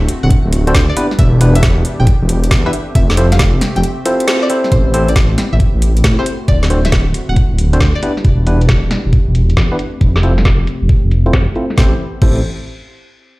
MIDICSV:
0, 0, Header, 1, 6, 480
1, 0, Start_track
1, 0, Key_signature, 0, "minor"
1, 0, Tempo, 441176
1, 1293, Time_signature, 4, 2, 24, 8
1, 14576, End_track
2, 0, Start_track
2, 0, Title_t, "Synth pluck"
2, 0, Program_c, 0, 84
2, 253, Note_on_c, 0, 78, 98
2, 482, Note_off_c, 0, 78, 0
2, 973, Note_on_c, 0, 74, 88
2, 1202, Note_off_c, 0, 74, 0
2, 1293, Note_on_c, 0, 76, 99
2, 1527, Note_off_c, 0, 76, 0
2, 1693, Note_on_c, 0, 76, 93
2, 1979, Note_off_c, 0, 76, 0
2, 2173, Note_on_c, 0, 79, 92
2, 2402, Note_off_c, 0, 79, 0
2, 2895, Note_on_c, 0, 76, 96
2, 3123, Note_off_c, 0, 76, 0
2, 3214, Note_on_c, 0, 76, 103
2, 3448, Note_off_c, 0, 76, 0
2, 3615, Note_on_c, 0, 77, 97
2, 3900, Note_off_c, 0, 77, 0
2, 4094, Note_on_c, 0, 79, 96
2, 4323, Note_off_c, 0, 79, 0
2, 4813, Note_on_c, 0, 74, 92
2, 5042, Note_off_c, 0, 74, 0
2, 5132, Note_on_c, 0, 72, 99
2, 5367, Note_off_c, 0, 72, 0
2, 5534, Note_on_c, 0, 74, 95
2, 5819, Note_off_c, 0, 74, 0
2, 6014, Note_on_c, 0, 76, 93
2, 6242, Note_off_c, 0, 76, 0
2, 6734, Note_on_c, 0, 72, 89
2, 6962, Note_off_c, 0, 72, 0
2, 7053, Note_on_c, 0, 74, 99
2, 7287, Note_off_c, 0, 74, 0
2, 7452, Note_on_c, 0, 76, 92
2, 7739, Note_off_c, 0, 76, 0
2, 7933, Note_on_c, 0, 78, 91
2, 8162, Note_off_c, 0, 78, 0
2, 8653, Note_on_c, 0, 74, 94
2, 8882, Note_off_c, 0, 74, 0
2, 14576, End_track
3, 0, Start_track
3, 0, Title_t, "Tine electric piano"
3, 0, Program_c, 1, 4
3, 732, Note_on_c, 1, 60, 96
3, 732, Note_on_c, 1, 66, 88
3, 732, Note_on_c, 1, 69, 86
3, 732, Note_on_c, 1, 72, 104
3, 733, Note_on_c, 1, 62, 85
3, 808, Note_off_c, 1, 72, 0
3, 809, Note_off_c, 1, 60, 0
3, 809, Note_off_c, 1, 62, 0
3, 809, Note_off_c, 1, 66, 0
3, 809, Note_off_c, 1, 69, 0
3, 1052, Note_on_c, 1, 62, 83
3, 1052, Note_on_c, 1, 64, 82
3, 1052, Note_on_c, 1, 71, 103
3, 1053, Note_on_c, 1, 59, 91
3, 1053, Note_on_c, 1, 67, 84
3, 1147, Note_off_c, 1, 62, 0
3, 1147, Note_off_c, 1, 64, 0
3, 1147, Note_off_c, 1, 71, 0
3, 1148, Note_off_c, 1, 59, 0
3, 1148, Note_off_c, 1, 67, 0
3, 1533, Note_on_c, 1, 62, 81
3, 1534, Note_on_c, 1, 59, 88
3, 1534, Note_on_c, 1, 64, 78
3, 1534, Note_on_c, 1, 67, 82
3, 1534, Note_on_c, 1, 71, 104
3, 1685, Note_off_c, 1, 59, 0
3, 1685, Note_off_c, 1, 62, 0
3, 1685, Note_off_c, 1, 64, 0
3, 1685, Note_off_c, 1, 67, 0
3, 1685, Note_off_c, 1, 71, 0
3, 2893, Note_on_c, 1, 59, 92
3, 2893, Note_on_c, 1, 64, 87
3, 2893, Note_on_c, 1, 67, 83
3, 2893, Note_on_c, 1, 71, 102
3, 2894, Note_on_c, 1, 62, 86
3, 2940, Note_off_c, 1, 64, 0
3, 2940, Note_off_c, 1, 67, 0
3, 2941, Note_off_c, 1, 59, 0
3, 2941, Note_off_c, 1, 62, 0
3, 2941, Note_off_c, 1, 71, 0
3, 3453, Note_on_c, 1, 60, 96
3, 3453, Note_on_c, 1, 64, 84
3, 3453, Note_on_c, 1, 65, 82
3, 3453, Note_on_c, 1, 69, 84
3, 3453, Note_on_c, 1, 72, 103
3, 3548, Note_off_c, 1, 60, 0
3, 3548, Note_off_c, 1, 64, 0
3, 3548, Note_off_c, 1, 65, 0
3, 3548, Note_off_c, 1, 69, 0
3, 3548, Note_off_c, 1, 72, 0
3, 4413, Note_on_c, 1, 60, 91
3, 4413, Note_on_c, 1, 64, 79
3, 4413, Note_on_c, 1, 65, 80
3, 4413, Note_on_c, 1, 69, 81
3, 4413, Note_on_c, 1, 72, 95
3, 4873, Note_off_c, 1, 60, 0
3, 4873, Note_off_c, 1, 64, 0
3, 4873, Note_off_c, 1, 65, 0
3, 4873, Note_off_c, 1, 69, 0
3, 4873, Note_off_c, 1, 72, 0
3, 4893, Note_on_c, 1, 60, 77
3, 4893, Note_on_c, 1, 67, 73
3, 4893, Note_on_c, 1, 69, 71
3, 4893, Note_on_c, 1, 72, 81
3, 4894, Note_on_c, 1, 64, 74
3, 5353, Note_off_c, 1, 60, 0
3, 5353, Note_off_c, 1, 69, 0
3, 5353, Note_off_c, 1, 72, 0
3, 5354, Note_off_c, 1, 64, 0
3, 5354, Note_off_c, 1, 67, 0
3, 5373, Note_on_c, 1, 60, 88
3, 5373, Note_on_c, 1, 64, 78
3, 5373, Note_on_c, 1, 67, 81
3, 5373, Note_on_c, 1, 72, 97
3, 5374, Note_on_c, 1, 69, 80
3, 5525, Note_off_c, 1, 60, 0
3, 5525, Note_off_c, 1, 64, 0
3, 5525, Note_off_c, 1, 67, 0
3, 5525, Note_off_c, 1, 69, 0
3, 5525, Note_off_c, 1, 72, 0
3, 6732, Note_on_c, 1, 60, 86
3, 6732, Note_on_c, 1, 64, 81
3, 6732, Note_on_c, 1, 67, 77
3, 6732, Note_on_c, 1, 69, 78
3, 6732, Note_on_c, 1, 72, 98
3, 6780, Note_off_c, 1, 60, 0
3, 6780, Note_off_c, 1, 64, 0
3, 6780, Note_off_c, 1, 67, 0
3, 6780, Note_off_c, 1, 69, 0
3, 6780, Note_off_c, 1, 72, 0
3, 7292, Note_on_c, 1, 62, 85
3, 7292, Note_on_c, 1, 66, 85
3, 7292, Note_on_c, 1, 72, 97
3, 7293, Note_on_c, 1, 60, 87
3, 7293, Note_on_c, 1, 69, 80
3, 7387, Note_off_c, 1, 62, 0
3, 7387, Note_off_c, 1, 66, 0
3, 7387, Note_off_c, 1, 72, 0
3, 7388, Note_off_c, 1, 60, 0
3, 7388, Note_off_c, 1, 69, 0
3, 8413, Note_on_c, 1, 60, 90
3, 8413, Note_on_c, 1, 62, 84
3, 8413, Note_on_c, 1, 66, 84
3, 8413, Note_on_c, 1, 69, 80
3, 8413, Note_on_c, 1, 72, 100
3, 8489, Note_off_c, 1, 60, 0
3, 8489, Note_off_c, 1, 62, 0
3, 8489, Note_off_c, 1, 66, 0
3, 8489, Note_off_c, 1, 69, 0
3, 8489, Note_off_c, 1, 72, 0
3, 8733, Note_on_c, 1, 59, 89
3, 8733, Note_on_c, 1, 62, 80
3, 8733, Note_on_c, 1, 64, 83
3, 8733, Note_on_c, 1, 67, 81
3, 8733, Note_on_c, 1, 71, 92
3, 8827, Note_off_c, 1, 64, 0
3, 8827, Note_off_c, 1, 71, 0
3, 8828, Note_off_c, 1, 59, 0
3, 8828, Note_off_c, 1, 62, 0
3, 8828, Note_off_c, 1, 67, 0
3, 9213, Note_on_c, 1, 59, 87
3, 9213, Note_on_c, 1, 62, 81
3, 9213, Note_on_c, 1, 64, 80
3, 9213, Note_on_c, 1, 67, 76
3, 9213, Note_on_c, 1, 71, 96
3, 9365, Note_off_c, 1, 59, 0
3, 9365, Note_off_c, 1, 62, 0
3, 9365, Note_off_c, 1, 64, 0
3, 9365, Note_off_c, 1, 67, 0
3, 9365, Note_off_c, 1, 71, 0
3, 10572, Note_on_c, 1, 59, 92
3, 10572, Note_on_c, 1, 62, 81
3, 10572, Note_on_c, 1, 64, 83
3, 10572, Note_on_c, 1, 67, 80
3, 10572, Note_on_c, 1, 71, 93
3, 10620, Note_off_c, 1, 59, 0
3, 10620, Note_off_c, 1, 62, 0
3, 10620, Note_off_c, 1, 64, 0
3, 10620, Note_off_c, 1, 67, 0
3, 10620, Note_off_c, 1, 71, 0
3, 11133, Note_on_c, 1, 60, 90
3, 11133, Note_on_c, 1, 69, 81
3, 11134, Note_on_c, 1, 64, 83
3, 11134, Note_on_c, 1, 65, 81
3, 11134, Note_on_c, 1, 72, 101
3, 11228, Note_off_c, 1, 60, 0
3, 11228, Note_off_c, 1, 64, 0
3, 11228, Note_off_c, 1, 65, 0
3, 11228, Note_off_c, 1, 69, 0
3, 11228, Note_off_c, 1, 72, 0
3, 12253, Note_on_c, 1, 64, 84
3, 12253, Note_on_c, 1, 65, 85
3, 12253, Note_on_c, 1, 69, 81
3, 12253, Note_on_c, 1, 72, 101
3, 12254, Note_on_c, 1, 60, 92
3, 12329, Note_off_c, 1, 60, 0
3, 12329, Note_off_c, 1, 64, 0
3, 12329, Note_off_c, 1, 65, 0
3, 12329, Note_off_c, 1, 69, 0
3, 12329, Note_off_c, 1, 72, 0
3, 12573, Note_on_c, 1, 64, 82
3, 12573, Note_on_c, 1, 65, 82
3, 12573, Note_on_c, 1, 69, 83
3, 12574, Note_on_c, 1, 60, 90
3, 12574, Note_on_c, 1, 72, 97
3, 12668, Note_off_c, 1, 60, 0
3, 12668, Note_off_c, 1, 64, 0
3, 12668, Note_off_c, 1, 65, 0
3, 12668, Note_off_c, 1, 69, 0
3, 12668, Note_off_c, 1, 72, 0
3, 12813, Note_on_c, 1, 64, 76
3, 12813, Note_on_c, 1, 67, 74
3, 12813, Note_on_c, 1, 69, 79
3, 12813, Note_on_c, 1, 72, 90
3, 12814, Note_on_c, 1, 60, 83
3, 12976, Note_off_c, 1, 60, 0
3, 12976, Note_off_c, 1, 64, 0
3, 12976, Note_off_c, 1, 67, 0
3, 12976, Note_off_c, 1, 69, 0
3, 12976, Note_off_c, 1, 72, 0
3, 13293, Note_on_c, 1, 60, 83
3, 13293, Note_on_c, 1, 67, 77
3, 13293, Note_on_c, 1, 69, 80
3, 13293, Note_on_c, 1, 72, 90
3, 13294, Note_on_c, 1, 64, 76
3, 13486, Note_off_c, 1, 60, 0
3, 13486, Note_off_c, 1, 64, 0
3, 13486, Note_off_c, 1, 67, 0
3, 13486, Note_off_c, 1, 69, 0
3, 13486, Note_off_c, 1, 72, 0
3, 14576, End_track
4, 0, Start_track
4, 0, Title_t, "Analog synth pad"
4, 0, Program_c, 2, 89
4, 0, Note_on_c, 2, 57, 89
4, 0, Note_on_c, 2, 60, 79
4, 0, Note_on_c, 2, 66, 92
4, 0, Note_on_c, 2, 76, 80
4, 1033, Note_off_c, 2, 57, 0
4, 1033, Note_off_c, 2, 60, 0
4, 1033, Note_off_c, 2, 66, 0
4, 1052, Note_on_c, 2, 62, 74
4, 1052, Note_on_c, 2, 67, 91
4, 1053, Note_on_c, 2, 59, 86
4, 2928, Note_off_c, 2, 76, 0
4, 2953, Note_off_c, 2, 59, 0
4, 2953, Note_off_c, 2, 62, 0
4, 2971, Note_on_c, 2, 57, 85
4, 2971, Note_on_c, 2, 60, 78
4, 2972, Note_on_c, 2, 76, 77
4, 5091, Note_off_c, 2, 67, 0
4, 5110, Note_off_c, 2, 57, 0
4, 5110, Note_off_c, 2, 60, 0
4, 5111, Note_off_c, 2, 76, 0
4, 5130, Note_on_c, 2, 60, 73
4, 5131, Note_on_c, 2, 59, 81
4, 5131, Note_on_c, 2, 64, 76
4, 5132, Note_on_c, 2, 67, 88
4, 6795, Note_off_c, 2, 59, 0
4, 6795, Note_off_c, 2, 67, 0
4, 6811, Note_on_c, 2, 57, 86
4, 6811, Note_on_c, 2, 66, 88
4, 8695, Note_off_c, 2, 60, 0
4, 8712, Note_off_c, 2, 57, 0
4, 8712, Note_off_c, 2, 66, 0
4, 8733, Note_on_c, 2, 67, 88
4, 8734, Note_on_c, 2, 59, 83
4, 8734, Note_on_c, 2, 62, 76
4, 10633, Note_off_c, 2, 67, 0
4, 10634, Note_off_c, 2, 59, 0
4, 10634, Note_off_c, 2, 62, 0
4, 10651, Note_on_c, 2, 57, 81
4, 10651, Note_on_c, 2, 60, 78
4, 10651, Note_on_c, 2, 67, 90
4, 12768, Note_off_c, 2, 64, 0
4, 12790, Note_off_c, 2, 57, 0
4, 12790, Note_off_c, 2, 60, 0
4, 12790, Note_off_c, 2, 67, 0
4, 12813, Note_on_c, 2, 59, 74
4, 12813, Note_on_c, 2, 60, 66
4, 12813, Note_on_c, 2, 64, 67
4, 12813, Note_on_c, 2, 67, 81
4, 13036, Note_off_c, 2, 59, 0
4, 13036, Note_off_c, 2, 60, 0
4, 13036, Note_off_c, 2, 64, 0
4, 13036, Note_off_c, 2, 67, 0
4, 14576, End_track
5, 0, Start_track
5, 0, Title_t, "Detuned saw bass"
5, 0, Program_c, 3, 39
5, 251, Note_on_c, 3, 26, 96
5, 320, Note_off_c, 3, 26, 0
5, 492, Note_on_c, 3, 26, 90
5, 794, Note_off_c, 3, 26, 0
5, 811, Note_on_c, 3, 38, 108
5, 948, Note_off_c, 3, 38, 0
5, 1291, Note_on_c, 3, 28, 97
5, 1993, Note_off_c, 3, 28, 0
5, 2171, Note_on_c, 3, 28, 99
5, 2240, Note_off_c, 3, 28, 0
5, 2410, Note_on_c, 3, 28, 90
5, 2713, Note_off_c, 3, 28, 0
5, 2731, Note_on_c, 3, 40, 110
5, 2868, Note_off_c, 3, 40, 0
5, 3212, Note_on_c, 3, 29, 96
5, 3913, Note_off_c, 3, 29, 0
5, 4091, Note_on_c, 3, 29, 91
5, 4160, Note_off_c, 3, 29, 0
5, 5133, Note_on_c, 3, 33, 97
5, 5834, Note_off_c, 3, 33, 0
5, 6012, Note_on_c, 3, 33, 96
5, 6081, Note_off_c, 3, 33, 0
5, 6250, Note_on_c, 3, 33, 91
5, 6553, Note_off_c, 3, 33, 0
5, 6572, Note_on_c, 3, 45, 106
5, 6709, Note_off_c, 3, 45, 0
5, 7052, Note_on_c, 3, 26, 91
5, 7753, Note_off_c, 3, 26, 0
5, 7929, Note_on_c, 3, 26, 99
5, 7999, Note_off_c, 3, 26, 0
5, 8169, Note_on_c, 3, 26, 94
5, 8472, Note_off_c, 3, 26, 0
5, 8491, Note_on_c, 3, 38, 108
5, 8628, Note_off_c, 3, 38, 0
5, 8972, Note_on_c, 3, 28, 93
5, 9673, Note_off_c, 3, 28, 0
5, 9851, Note_on_c, 3, 28, 97
5, 9920, Note_off_c, 3, 28, 0
5, 10091, Note_on_c, 3, 28, 92
5, 10393, Note_off_c, 3, 28, 0
5, 10411, Note_on_c, 3, 40, 103
5, 10548, Note_off_c, 3, 40, 0
5, 10891, Note_on_c, 3, 29, 98
5, 11593, Note_off_c, 3, 29, 0
5, 11771, Note_on_c, 3, 29, 97
5, 11840, Note_off_c, 3, 29, 0
5, 12011, Note_on_c, 3, 29, 93
5, 12313, Note_off_c, 3, 29, 0
5, 12332, Note_on_c, 3, 41, 110
5, 12469, Note_off_c, 3, 41, 0
5, 12811, Note_on_c, 3, 33, 98
5, 12975, Note_off_c, 3, 33, 0
5, 13292, Note_on_c, 3, 33, 92
5, 13515, Note_off_c, 3, 33, 0
5, 14576, End_track
6, 0, Start_track
6, 0, Title_t, "Drums"
6, 92, Note_on_c, 9, 46, 102
6, 201, Note_off_c, 9, 46, 0
6, 331, Note_on_c, 9, 36, 112
6, 332, Note_on_c, 9, 42, 69
6, 440, Note_off_c, 9, 36, 0
6, 440, Note_off_c, 9, 42, 0
6, 572, Note_on_c, 9, 46, 109
6, 680, Note_off_c, 9, 46, 0
6, 732, Note_on_c, 9, 42, 65
6, 811, Note_on_c, 9, 36, 112
6, 811, Note_on_c, 9, 38, 122
6, 840, Note_off_c, 9, 42, 0
6, 920, Note_off_c, 9, 36, 0
6, 920, Note_off_c, 9, 38, 0
6, 1051, Note_on_c, 9, 46, 102
6, 1160, Note_off_c, 9, 46, 0
6, 1211, Note_on_c, 9, 40, 30
6, 1291, Note_on_c, 9, 36, 110
6, 1291, Note_on_c, 9, 42, 75
6, 1320, Note_off_c, 9, 40, 0
6, 1400, Note_off_c, 9, 36, 0
6, 1400, Note_off_c, 9, 42, 0
6, 1531, Note_on_c, 9, 46, 104
6, 1640, Note_off_c, 9, 46, 0
6, 1691, Note_on_c, 9, 42, 73
6, 1771, Note_off_c, 9, 42, 0
6, 1771, Note_on_c, 9, 36, 120
6, 1771, Note_on_c, 9, 38, 117
6, 1771, Note_on_c, 9, 42, 67
6, 1880, Note_off_c, 9, 36, 0
6, 1880, Note_off_c, 9, 38, 0
6, 1880, Note_off_c, 9, 42, 0
6, 2011, Note_on_c, 9, 46, 106
6, 2120, Note_off_c, 9, 46, 0
6, 2251, Note_on_c, 9, 36, 112
6, 2251, Note_on_c, 9, 42, 73
6, 2360, Note_off_c, 9, 36, 0
6, 2360, Note_off_c, 9, 42, 0
6, 2491, Note_on_c, 9, 46, 105
6, 2600, Note_off_c, 9, 46, 0
6, 2651, Note_on_c, 9, 42, 70
6, 2731, Note_on_c, 9, 36, 109
6, 2731, Note_on_c, 9, 38, 113
6, 2760, Note_off_c, 9, 42, 0
6, 2840, Note_off_c, 9, 36, 0
6, 2840, Note_off_c, 9, 38, 0
6, 2972, Note_on_c, 9, 46, 103
6, 3080, Note_off_c, 9, 46, 0
6, 3212, Note_on_c, 9, 36, 115
6, 3212, Note_on_c, 9, 42, 73
6, 3320, Note_off_c, 9, 36, 0
6, 3321, Note_off_c, 9, 42, 0
6, 3371, Note_on_c, 9, 38, 58
6, 3452, Note_on_c, 9, 46, 108
6, 3480, Note_off_c, 9, 38, 0
6, 3561, Note_off_c, 9, 46, 0
6, 3612, Note_on_c, 9, 40, 55
6, 3612, Note_on_c, 9, 42, 69
6, 3692, Note_off_c, 9, 42, 0
6, 3692, Note_on_c, 9, 36, 119
6, 3692, Note_on_c, 9, 38, 117
6, 3692, Note_on_c, 9, 42, 66
6, 3721, Note_off_c, 9, 40, 0
6, 3801, Note_off_c, 9, 36, 0
6, 3801, Note_off_c, 9, 38, 0
6, 3801, Note_off_c, 9, 42, 0
6, 3931, Note_on_c, 9, 40, 71
6, 3931, Note_on_c, 9, 46, 112
6, 4040, Note_off_c, 9, 40, 0
6, 4040, Note_off_c, 9, 46, 0
6, 4092, Note_on_c, 9, 42, 38
6, 4173, Note_off_c, 9, 42, 0
6, 4173, Note_on_c, 9, 42, 70
6, 4282, Note_off_c, 9, 42, 0
6, 4412, Note_on_c, 9, 46, 111
6, 4521, Note_off_c, 9, 46, 0
6, 4572, Note_on_c, 9, 42, 67
6, 4653, Note_on_c, 9, 38, 115
6, 4681, Note_off_c, 9, 42, 0
6, 4762, Note_off_c, 9, 38, 0
6, 4893, Note_on_c, 9, 46, 109
6, 5001, Note_off_c, 9, 46, 0
6, 5052, Note_on_c, 9, 40, 32
6, 5132, Note_on_c, 9, 36, 107
6, 5132, Note_on_c, 9, 42, 65
6, 5161, Note_off_c, 9, 40, 0
6, 5241, Note_off_c, 9, 36, 0
6, 5241, Note_off_c, 9, 42, 0
6, 5372, Note_on_c, 9, 46, 99
6, 5481, Note_off_c, 9, 46, 0
6, 5532, Note_on_c, 9, 42, 66
6, 5612, Note_off_c, 9, 42, 0
6, 5612, Note_on_c, 9, 36, 123
6, 5612, Note_on_c, 9, 38, 117
6, 5612, Note_on_c, 9, 42, 68
6, 5721, Note_off_c, 9, 36, 0
6, 5721, Note_off_c, 9, 38, 0
6, 5721, Note_off_c, 9, 42, 0
6, 5853, Note_on_c, 9, 40, 66
6, 5853, Note_on_c, 9, 46, 107
6, 5961, Note_off_c, 9, 40, 0
6, 5961, Note_off_c, 9, 46, 0
6, 6092, Note_on_c, 9, 36, 116
6, 6093, Note_on_c, 9, 42, 66
6, 6201, Note_off_c, 9, 36, 0
6, 6202, Note_off_c, 9, 42, 0
6, 6333, Note_on_c, 9, 46, 106
6, 6441, Note_off_c, 9, 46, 0
6, 6492, Note_on_c, 9, 42, 65
6, 6572, Note_on_c, 9, 36, 118
6, 6572, Note_on_c, 9, 38, 127
6, 6601, Note_off_c, 9, 42, 0
6, 6681, Note_off_c, 9, 36, 0
6, 6681, Note_off_c, 9, 38, 0
6, 6812, Note_on_c, 9, 46, 102
6, 6921, Note_off_c, 9, 46, 0
6, 7052, Note_on_c, 9, 36, 112
6, 7052, Note_on_c, 9, 42, 64
6, 7160, Note_off_c, 9, 36, 0
6, 7161, Note_off_c, 9, 42, 0
6, 7212, Note_on_c, 9, 38, 62
6, 7292, Note_on_c, 9, 46, 101
6, 7321, Note_off_c, 9, 38, 0
6, 7401, Note_off_c, 9, 46, 0
6, 7451, Note_on_c, 9, 40, 53
6, 7451, Note_on_c, 9, 42, 66
6, 7532, Note_off_c, 9, 42, 0
6, 7532, Note_on_c, 9, 36, 125
6, 7532, Note_on_c, 9, 38, 124
6, 7532, Note_on_c, 9, 42, 62
6, 7560, Note_off_c, 9, 40, 0
6, 7640, Note_off_c, 9, 36, 0
6, 7641, Note_off_c, 9, 38, 0
6, 7641, Note_off_c, 9, 42, 0
6, 7772, Note_on_c, 9, 46, 96
6, 7880, Note_off_c, 9, 46, 0
6, 8012, Note_on_c, 9, 36, 119
6, 8012, Note_on_c, 9, 42, 64
6, 8121, Note_off_c, 9, 36, 0
6, 8121, Note_off_c, 9, 42, 0
6, 8252, Note_on_c, 9, 46, 108
6, 8361, Note_off_c, 9, 46, 0
6, 8413, Note_on_c, 9, 42, 58
6, 8492, Note_on_c, 9, 36, 118
6, 8492, Note_on_c, 9, 38, 127
6, 8522, Note_off_c, 9, 42, 0
6, 8600, Note_off_c, 9, 36, 0
6, 8601, Note_off_c, 9, 38, 0
6, 8733, Note_on_c, 9, 46, 99
6, 8842, Note_off_c, 9, 46, 0
6, 8892, Note_on_c, 9, 40, 30
6, 8972, Note_on_c, 9, 36, 123
6, 8972, Note_on_c, 9, 42, 66
6, 9000, Note_off_c, 9, 40, 0
6, 9080, Note_off_c, 9, 36, 0
6, 9081, Note_off_c, 9, 42, 0
6, 9212, Note_on_c, 9, 46, 99
6, 9320, Note_off_c, 9, 46, 0
6, 9372, Note_on_c, 9, 42, 60
6, 9451, Note_on_c, 9, 36, 125
6, 9452, Note_off_c, 9, 42, 0
6, 9452, Note_on_c, 9, 38, 127
6, 9452, Note_on_c, 9, 42, 64
6, 9560, Note_off_c, 9, 36, 0
6, 9561, Note_off_c, 9, 38, 0
6, 9561, Note_off_c, 9, 42, 0
6, 9692, Note_on_c, 9, 40, 68
6, 9692, Note_on_c, 9, 46, 101
6, 9800, Note_off_c, 9, 40, 0
6, 9800, Note_off_c, 9, 46, 0
6, 9931, Note_on_c, 9, 36, 124
6, 9932, Note_on_c, 9, 42, 65
6, 10040, Note_off_c, 9, 36, 0
6, 10041, Note_off_c, 9, 42, 0
6, 10172, Note_on_c, 9, 46, 102
6, 10281, Note_off_c, 9, 46, 0
6, 10332, Note_on_c, 9, 42, 60
6, 10411, Note_on_c, 9, 36, 125
6, 10412, Note_on_c, 9, 38, 127
6, 10441, Note_off_c, 9, 42, 0
6, 10520, Note_off_c, 9, 36, 0
6, 10521, Note_off_c, 9, 38, 0
6, 10652, Note_on_c, 9, 46, 103
6, 10761, Note_off_c, 9, 46, 0
6, 10891, Note_on_c, 9, 36, 112
6, 10892, Note_on_c, 9, 42, 68
6, 11000, Note_off_c, 9, 36, 0
6, 11000, Note_off_c, 9, 42, 0
6, 11051, Note_on_c, 9, 38, 60
6, 11132, Note_on_c, 9, 46, 93
6, 11160, Note_off_c, 9, 38, 0
6, 11240, Note_off_c, 9, 46, 0
6, 11292, Note_on_c, 9, 40, 53
6, 11292, Note_on_c, 9, 42, 62
6, 11371, Note_on_c, 9, 36, 121
6, 11372, Note_off_c, 9, 42, 0
6, 11372, Note_on_c, 9, 38, 126
6, 11372, Note_on_c, 9, 42, 62
6, 11401, Note_off_c, 9, 40, 0
6, 11480, Note_off_c, 9, 36, 0
6, 11481, Note_off_c, 9, 38, 0
6, 11481, Note_off_c, 9, 42, 0
6, 11612, Note_on_c, 9, 46, 99
6, 11721, Note_off_c, 9, 46, 0
6, 11851, Note_on_c, 9, 36, 122
6, 11852, Note_on_c, 9, 42, 64
6, 11960, Note_off_c, 9, 36, 0
6, 11961, Note_off_c, 9, 42, 0
6, 12092, Note_on_c, 9, 46, 94
6, 12201, Note_off_c, 9, 46, 0
6, 12252, Note_on_c, 9, 42, 59
6, 12332, Note_on_c, 9, 36, 126
6, 12332, Note_on_c, 9, 38, 127
6, 12361, Note_off_c, 9, 42, 0
6, 12441, Note_off_c, 9, 36, 0
6, 12441, Note_off_c, 9, 38, 0
6, 12572, Note_on_c, 9, 46, 92
6, 12681, Note_off_c, 9, 46, 0
6, 12733, Note_on_c, 9, 40, 29
6, 12812, Note_on_c, 9, 36, 103
6, 12813, Note_on_c, 9, 38, 86
6, 12841, Note_off_c, 9, 40, 0
6, 12921, Note_off_c, 9, 36, 0
6, 12921, Note_off_c, 9, 38, 0
6, 13292, Note_on_c, 9, 36, 112
6, 13292, Note_on_c, 9, 49, 90
6, 13401, Note_off_c, 9, 36, 0
6, 13401, Note_off_c, 9, 49, 0
6, 14576, End_track
0, 0, End_of_file